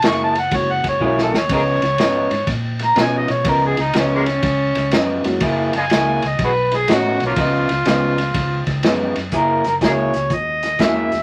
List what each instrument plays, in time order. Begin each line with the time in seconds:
0.02 fingered electric bass F#1, clean electric guitar F#3 A#3 E4 G#4, snare, ride
0.07 harmonica C#6
0.24 harmonica A5
0.35 muted clean electric guitar stroke, snare, ride
0.39 harmonica F#5
0.51 fingered electric bass F#1, upright piano G#3 A#3 C#4 E4 F#4, muted clean electric guitar stroke, kick, snare, ride
0.56 harmonica C#5
0.72 harmonica F#5
0.84 fingered electric bass F#1, muted clean electric guitar stroke, kick, snare, ride
0.89 harmonica C#5
1.00 fingered electric bass B1, clean electric guitar F#3 A#3 E4 G#4, upright piano G#3 A#3 C#4 E4 F#4, kick
1.06 harmonica C#5
1.18 harmonica A4, snare
1.33 fingered electric bass D#2, muted clean electric guitar stroke, snare
1.38 harmonica C#5
1.49 fingered electric bass C#2, clean electric guitar C#3 F3 B3 D#4, kick, snare, ride
1.53 harmonica G#4 A#4 C#5
1.82 fingered electric bass C#2, muted clean electric guitar stroke, snare, ride
1.98 fingered electric bass G#2, clean electric guitar C#3 F3 B3 D#4, snare, ride
2.31 fingered electric bass G#2, muted clean electric guitar stroke, snare, ride
2.47 fingered electric bass A#2, muted clean electric guitar stroke, kick, snare, ride
2.79 muted clean electric guitar stroke, snare, ride
2.85 harmonica A#5
2.95 fingered electric bass B2, clean electric guitar C#3 F3 B3 D#4, upright piano G#3 B3 C#4 D#4 F4, snare, ride
3.01 harmonica G#5
3.17 harmonica D#5
3.28 fingered electric bass B2, harmonica C#5, muted clean electric guitar stroke, snare, ride
3.45 fingered electric bass C#2, clean electric guitar C#3 F3 B3 D#4, kick, snare, ride
3.49 harmonica A#4
3.66 harmonica G#4
3.77 fingered electric bass C#2, muted clean electric guitar stroke, snare, ride
3.81 harmonica D#4
3.93 fingered electric bass C#2, clean electric guitar C#3 F3 B3 D#4, snare, ride
3.98 harmonica C#4
4.15 harmonica G#3 A#3 C#4
4.26 muted clean electric guitar stroke, snare, ride
4.42 fingered electric bass C#2, muted clean electric guitar stroke, kick, snare, ride
4.75 fingered electric bass C#2, muted clean electric guitar stroke, snare, ride
4.91 fingered electric bass F#2, clean electric guitar C#3 F3 B3 D#4, snare, ride
5.24 fingered electric bass F#2, upright piano G#3 A#3 C#4 E4 F#4, muted clean electric guitar stroke, snare, ride
5.41 fingered electric bass F#1, clean electric guitar F#3 A#3 E4 G#4, kick, snare, ride
5.73 fingered electric bass F#1, muted clean electric guitar stroke, snare, ride
5.78 harmonica D#5 F5 G#5
5.90 fingered electric bass C#2, clean electric guitar F#3 A#3 E4 G#4, snare, ride
6.22 fingered electric bass C#2, muted clean electric guitar stroke, snare, ride
6.27 harmonica D#5
6.39 fingered electric bass B1, muted clean electric guitar stroke, kick, snare, ride
6.44 harmonica F#4 G#4 B4
6.71 muted clean electric guitar stroke, snare, ride
6.76 harmonica G#4
6.88 fingered electric bass A2, clean electric guitar B2 A3 C#4 D#4, upright piano A3 B3 C#4 D#4 F#4, snare, ride
6.93 harmonica F#4
7.20 fingered electric bass B1, muted clean electric guitar stroke, snare, ride
7.26 harmonica A#3 C#4 F4
7.36 fingered electric bass C#2, clean electric guitar C#3 F3 B3 D#4, kick, snare, ride
7.69 fingered electric bass C#2, muted clean electric guitar stroke, snare, ride
7.85 fingered electric bass C#2, clean electric guitar C#3 F3 B3 D#4, upright piano G#3 B3 C#4 D#4 F4, snare, ride
8.18 muted clean electric guitar stroke, snare, ride
8.34 fingered electric bass C#2, muted clean electric guitar stroke, kick, snare, ride
8.66 fingered electric bass C#2, muted clean electric guitar stroke, kick, snare, ride
8.83 fingered electric bass F#2, clean electric guitar C#3 F3 B3 D#4, upright piano G#3 B3 C#4 D#4 G#4, snare, ride
9.16 fingered electric bass F#2, muted clean electric guitar stroke, snare, ride
9.32 fingered electric bass F#1, clean electric guitar F#3 A#3 E4 G#4, harmonica A#4, kick, closed hi-hat
9.64 fingered electric bass F#1, harmonica A#4, muted clean electric guitar stroke, snare, closed hi-hat
9.81 fingered electric bass C#2, clean electric guitar F#3 A#3 E4 G#4, upright piano G#3 A#3 C#4 E4 F#4, harmonica G#4 A#4 C#5, kick, snare, closed hi-hat
10.14 fingered electric bass C#2, muted clean electric guitar stroke, snare, closed hi-hat
10.30 fingered electric bass D#2, harmonica D#5, muted clean electric guitar stroke, kick, closed hi-hat
10.63 muted clean electric guitar stroke, snare, closed hi-hat
10.79 fingered electric bass E2, clean electric guitar F#3 A#3 E4 G#4, upright piano G#3 A#3 C#4 E4 F#4, harmonica E5, kick, snare, closed hi-hat
11.12 fingered electric bass E2, snare, closed hi-hat